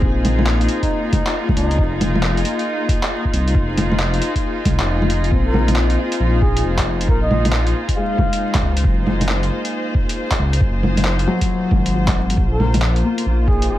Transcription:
Already playing: string section A#3 D#4 F4 G#4 C5, felt piano C4, synth texture G#4 G#5
0.02 detuned saw bass A#1, kick
0.25 closed hi-hat, low bongo
0.39 low bongo
0.47 clap
0.61 closed hi-hat
0.69 closed hi-hat
0.82 muted trumpet D#4, kick, closed hi-hat
1.11 muted trumpet D#4, kick, closed hi-hat, low bongo
1.27 clap
1.49 kick, low bongo
1.56 detuned saw bass C#2, muted trumpet D#4, closed hi-hat
1.71 closed hi-hat
1.78 detuned saw bass F1, kick
2.01 closed hi-hat, low bongo
2.15 low bongo
2.23 clap
2.37 closed hi-hat
2.45 closed hi-hat
2.59 closed hi-hat
2.89 kick, closed hi-hat
3.03 clap
3.25 kick
3.33 detuned saw bass C2, closed hi-hat
3.38 string section C5
3.48 closed hi-hat
3.55 detuned saw bass F1, kick
3.78 closed hi-hat, low bongo
3.92 low bongo
4.00 clap
4.14 closed hi-hat
4.22 closed hi-hat
4.35 kick, closed hi-hat
4.65 detuned saw bass C2, kick, closed hi-hat, low bongo
4.79 detuned saw bass F1, clap
5.02 low bongo
5.10 closed hi-hat
5.24 closed hi-hat
5.31 detuned saw bass A#1, felt piano C4, kick
5.46 muted trumpet A#4
5.54 low bongo
5.68 closed hi-hat, low bongo
5.76 clap
5.85 string section C5
5.90 closed hi-hat
6.12 closed hi-hat
6.20 detuned saw bass A#1
6.42 muted trumpet G#4, kick
6.57 closed hi-hat
6.64 detuned saw bass F1
6.78 kick, clap, closed hi-hat
7.01 closed hi-hat
7.08 detuned saw bass A#1, muted trumpet A#4, kick
7.22 muted trumpet D#5
7.31 low bongo
7.45 closed hi-hat, low bongo
7.53 clap
7.67 closed hi-hat
7.88 kick, closed hi-hat
7.96 felt piano G#3, muted trumpet F5
8.18 kick, low bongo
8.33 closed hi-hat
8.54 kick, clap, closed hi-hat, low bongo
8.62 detuned saw bass C#2
8.77 closed hi-hat
8.84 detuned saw bass F#1, kick
9.07 low bongo
9.21 closed hi-hat, low bongo
9.27 string section A#3, clap
9.43 closed hi-hat
9.65 closed hi-hat
9.95 kick
10.09 closed hi-hat
10.31 kick, clap, closed hi-hat
10.39 detuned saw bass C#2
10.53 closed hi-hat
10.61 detuned saw bass F#1, kick
10.83 low bongo
10.97 closed hi-hat, low bongo
11.05 clap
11.19 closed hi-hat
11.27 felt piano F#3
11.41 kick, closed hi-hat
11.71 detuned saw bass G#1, kick, low bongo
11.86 closed hi-hat
12.07 kick, clap, closed hi-hat, low bongo
12.30 closed hi-hat
12.37 detuned saw bass A#1, synth texture D#4 D#5, string section F4, kick
12.52 muted trumpet A#4
12.60 low bongo
12.74 closed hi-hat, low bongo
12.82 clap
12.96 closed hi-hat
13.04 felt piano A#3
13.18 closed hi-hat
13.26 detuned saw bass A#1
13.40 string section D#4
13.48 muted trumpet G#4, kick
13.62 string section G#4, closed hi-hat
13.69 detuned saw bass F1, muted trumpet G#4

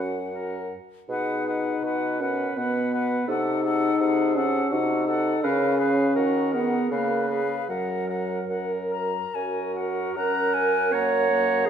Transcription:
Already playing: bassoon F#2, french horn C#4, clarinet F#4, flute F#5
0.34 oboe A#4
1.09 bassoon B2, french horn D#4, clarinet G#4, oboe B4, flute F#5
1.47 oboe B4, flute F#5
1.83 bassoon B2, clarinet F#4, oboe B4, flute F#5
2.20 french horn C#4, clarinet A#4, oboe B4, flute F#5
2.56 bassoon B2, french horn B3, clarinet B4, oboe B4, flute F#5
2.93 oboe B4, flute F#5
3.27 bassoon C3, french horn D#4, clarinet A4, oboe A4, flute F#5
3.64 clarinet G#4, oboe A4, flute F#5
4.00 bassoon C3, oboe A4, flute F#5
4.36 french horn C#4, oboe A4, flute F#5
4.71 bassoon C3, french horn D#4, clarinet F#4, oboe A4, flute F#5
5.07 oboe A4, clarinet A4, flute F#5
5.43 bassoon C#3, french horn C#4, clarinet A#4, oboe B4, flute F5
5.79 clarinet G#4, oboe B4, flute F5
6.15 bassoon D#3, clarinet F#4, oboe A#4, flute F#5
6.54 french horn B3, clarinet G#4, oboe A#4, flute F#5
6.91 bassoon C#3, french horn A#3, clarinet A#4, oboe B4, flute F5
7.30 clarinet G#4, oboe B4, flute F5
7.68 bassoon F#2, french horn F#3, oboe A#4, clarinet A#4, flute F#5
8.09 oboe A#4, flute F#5
8.48 bassoon F#2, oboe A#4, flute F#5
8.90 oboe A#4, flute A#5
9.35 bassoon F#2, clarinet F#4, oboe A#4, flute G#5
9.75 oboe A#4, flute F#5
10.15 bassoon F#2, french horn C#4, clarinet A#4, oboe F#5, flute A#5
10.54 flute G#5
10.92 french horn A#3, clarinet C#5, flute F#5, oboe A#5
11.31 french horn A#3
11.66 clarinet G#4

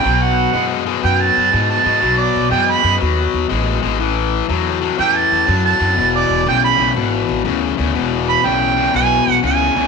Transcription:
Already playing: harmonica G5
0.03 upright bass B1, overdriven electric guitar B2 F#3
0.22 harmonica F#5
0.53 upright bass F#2, overdriven electric guitar B2 G#3
0.86 overdriven electric guitar B2 G#3
1.02 upright bass F#2, overdriven electric guitar B2 F#3, harmonica G5
1.22 harmonica A5
1.37 upright bass F#2
1.51 upright bass G#2, overdriven electric guitar B2 G#3
1.70 harmonica A5
1.83 upright bass G#2, overdriven electric guitar B2 G#3
2.01 upright bass B1, overdriven electric guitar B2 F#3
2.18 harmonica D5
2.36 upright bass B1
2.50 upright bass F#2, overdriven electric guitar B2 G#3, harmonica G5
2.70 harmonica B5
2.83 upright bass F#2, overdriven electric guitar B2 G#3
2.99 upright bass D#2, overdriven electric guitar B2 F#3
3.34 upright bass D#2
3.49 upright bass A1, overdriven electric guitar B2 G#3
3.82 upright bass G#1, overdriven electric guitar B2 G#3
3.99 upright bass A1, overdriven electric guitar A2 E3
4.49 upright bass E2, overdriven electric guitar A2 F#3
4.81 overdriven electric guitar A2 F#3
4.98 upright bass E2, overdriven electric guitar A2 E3, harmonica G5
5.15 harmonica A5
5.32 upright bass E2
5.46 upright bass F#2, overdriven electric guitar A2 F#3
5.65 harmonica A5
5.79 upright bass F#2, overdriven electric guitar A2 F#3
5.96 upright bass E1, overdriven electric guitar E2 B2
6.15 harmonica D5
6.30 upright bass E1
6.46 upright bass B1, overdriven electric guitar E2 C#3, harmonica G5
6.64 harmonica B5
6.78 upright bass B1, overdriven electric guitar E2 C#3
6.95 upright bass G#1, overdriven electric guitar E2 B2
7.29 upright bass G#1
7.45 upright bass D2, overdriven electric guitar E2 C#3
7.77 upright bass D2, overdriven electric guitar E2 C#3
7.94 upright bass E1, overdriven electric guitar E2 B2
8.29 harmonica B5
8.43 upright bass B1, overdriven electric guitar E2 C#3, harmonica G5
8.76 overdriven electric guitar E2 C#3
8.93 upright bass B1, overdriven electric guitar E2 B2, harmonica G#5
9.27 upright bass B1
9.43 upright bass C#2, overdriven electric guitar E2 C#3, harmonica G#5
9.75 upright bass C#2, overdriven electric guitar E2 C#3

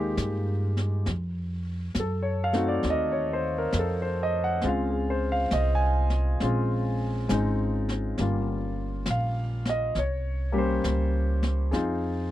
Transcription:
Already playing: upright bass D#2, grand piano G#3 A#3 D#4 G4 G#4
0.17 upright bass G2, snare, hi-hat pedal
0.77 snare
1.06 upright bass F2, brush sweep, snare
1.95 upright bass F#2, snare, hi-hat pedal
2.00 grand piano A4
2.23 grand piano C#5
2.44 grand piano F5
2.53 grand piano A3 C4 D#4 F#4, snare
2.68 grand piano D5
2.83 upright bass D#2, brush sweep, snare
2.90 grand piano D#5
3.12 grand piano C#5
3.33 grand piano C5
3.58 grand piano A#4
3.72 upright bass F2, snare, hi-hat pedal
3.79 grand piano A4
4.02 grand piano C5
4.23 grand piano D#5
4.44 grand piano F#5
4.61 upright bass C#2, grand piano G#3 C4 C#4 F4, brush sweep, snare
4.69 grand piano F5
4.91 grand piano G#4
5.10 grand piano C5
5.32 grand piano F5
5.51 upright bass C2, grand piano D#5, snare, hi-hat pedal
5.75 grand piano G#5
6.10 snare
6.40 upright bass A#1, grand piano G#3 C4 C#4 F4, brush sweep, snare
7.29 upright bass G#1, grand piano G#3 C4 C#4 D#4, snare, hi-hat pedal
7.89 snare
8.18 upright bass G1, grand piano G3 A#3 C#4 F4, brush sweep, snare
9.06 upright bass A#1, snare, hi-hat pedal
9.10 grand piano F5
9.65 snare
9.69 grand piano D#5
9.95 upright bass C2, grand piano C#5, brush sweep, snare
10.52 grand piano G3 A#3 C#4 G4
10.58 grand piano C5
10.84 upright bass C#2, snare, hi-hat pedal
11.43 snare
11.71 upright bass F2, grand piano C4 D#4 F4 G#4, brush sweep, snare

